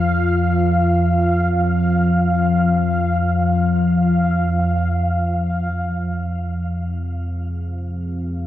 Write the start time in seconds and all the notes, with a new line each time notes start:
Already playing: F2 F3 F5
5.70 F2 F3 C4
6.78 F5
6.90 G#4